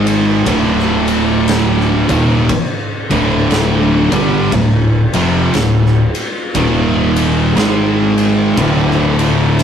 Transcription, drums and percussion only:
0.07 ride medium
0.46 kick loud
0.46 ride loud
0.79 snare soft
1.08 ride medium
1.48 snare loud
1.48 ride loud
1.80 snare soft
2.09 kick loud
2.09 ride medium
2.49 kick loud
2.49 ride loud
3.11 kick loud
3.11 ride medium
3.51 snare loud
3.51 ride medium
4.12 kick loud
4.12 ride medium
4.52 kick loud
4.52 ride loud
5.13 ride medium
5.54 snare loud
5.54 ride loud
5.86 snare soft
6.15 ride medium
6.55 kick loud
6.55 ride loud
7.16 ride medium
7.57 snare loud
7.57 ride loud
8.18 ride medium
8.57 kick loud
8.57 ride loud
8.90 snare soft
9.19 ride medium
9.59 ride loud

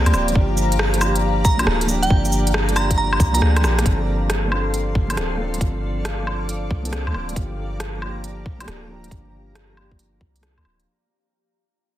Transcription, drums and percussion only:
0.06 closed hi-hat soft
0.06 low woodblock medium
0.14 cabasa medium
0.14 low woodblock medium
0.28 closed hi-hat medium
0.36 kick loud
0.57 cabasa medium
0.72 closed hi-hat medium
0.79 cross-stick loud
0.94 closed hi-hat soft
1.01 cabasa medium
1.01 low woodblock medium
1.16 closed hi-hat medium
1.45 kick loud
1.45 closed hi-hat soft
1.45 cabasa medium
1.59 closed hi-hat medium
1.59 low woodblock medium
1.67 cross-stick loud
1.81 closed hi-hat soft
1.89 cabasa medium
2.03 closed hi-hat medium
2.10 kick loud
2.25 cabasa soft
2.32 cabasa medium
2.47 closed hi-hat medium
2.54 cross-stick loud
2.69 closed hi-hat soft
2.76 cabasa medium
2.76 low woodblock medium
2.91 kick medium
2.91 closed hi-hat medium
3.13 low woodblock medium
3.20 kick loud
3.20 closed hi-hat soft
3.20 cabasa medium
3.35 closed hi-hat medium
3.42 cross-stick medium
3.56 cross-stick medium
3.56 closed hi-hat soft
3.56 low woodblock medium
3.64 cross-stick medium
3.64 cabasa medium
3.64 low woodblock medium
3.79 cross-stick medium
3.79 closed hi-hat medium
3.86 kick loud
3.86 closed hi-hat medium
4.30 cross-stick loud
4.30 closed hi-hat medium
4.52 low woodblock medium
4.74 closed hi-hat medium
4.95 kick loud
5.10 closed hi-hat medium
5.10 low woodblock medium
5.17 cross-stick loud
5.17 closed hi-hat medium
5.54 closed hi-hat soft
5.61 kick loud
5.61 closed hi-hat medium
6.05 cross-stick loud
6.05 closed hi-hat medium
6.27 low woodblock medium
6.49 closed hi-hat medium
6.71 kick loud
6.85 closed hi-hat medium
6.93 cross-stick loud
6.93 closed hi-hat medium
7.07 low woodblock medium
7.14 low woodblock medium
7.29 closed hi-hat soft
7.36 kick loud
7.36 closed hi-hat medium
7.80 cross-stick loud
7.80 closed hi-hat medium
8.02 low woodblock medium
8.24 closed hi-hat medium
8.46 kick loud
8.60 closed hi-hat medium
8.60 low woodblock medium
8.68 cross-stick loud
8.68 closed hi-hat medium
9.04 closed hi-hat soft
9.11 kick loud
9.11 closed hi-hat soft
9.55 cross-stick loud
9.55 closed hi-hat soft
9.77 low woodblock medium
9.92 kick medium
9.99 closed hi-hat medium
10.21 kick loud
10.36 closed hi-hat medium
10.43 cross-stick loud
10.43 closed hi-hat soft
10.58 low woodblock medium
10.65 low woodblock medium
10.80 closed hi-hat soft

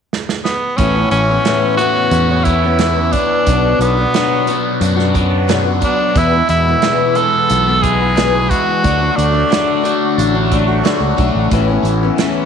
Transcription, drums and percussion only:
0.13 snare medium
0.29 snare medium
0.45 snare medium
0.78 kick medium
0.78 closed hi-hat medium
1.11 closed hi-hat medium
1.45 snare loud
1.45 closed hi-hat medium
1.79 closed hi-hat medium
2.11 closed hi-hat medium
2.45 kick medium
2.45 closed hi-hat medium
2.79 snare medium
2.79 closed hi-hat medium
3.13 kick medium
3.13 closed hi-hat medium
3.47 kick loud
3.47 closed hi-hat medium
3.81 closed hi-hat medium
4.14 snare loud
4.14 closed hi-hat medium
4.47 closed hi-hat soft
4.81 closed hi-hat medium
4.99 snare soft
5.15 kick medium
5.15 closed hi-hat medium
5.49 snare loud
5.49 closed hi-hat medium
5.82 kick medium
5.82 closed hi-hat medium
6.16 kick medium
6.16 closed hi-hat medium
6.49 closed hi-hat medium
6.82 snare medium
6.82 closed hi-hat medium
7.15 closed hi-hat medium
7.50 closed hi-hat medium
7.84 kick medium
7.84 closed hi-hat medium
8.17 snare loud
8.17 closed hi-hat medium
8.51 kick medium
8.51 closed hi-hat medium
8.84 kick medium
8.84 closed hi-hat medium
9.19 closed hi-hat medium
9.52 snare loud
9.52 closed hi-hat medium
9.85 closed hi-hat medium
10.19 closed hi-hat medium
10.52 kick medium
10.52 closed hi-hat medium
10.85 snare loud
10.85 closed hi-hat medium
11.18 kick medium
11.18 closed hi-hat medium
11.51 kick medium
11.51 closed hi-hat medium
11.85 closed hi-hat medium
12.18 snare medium
12.18 closed hi-hat medium

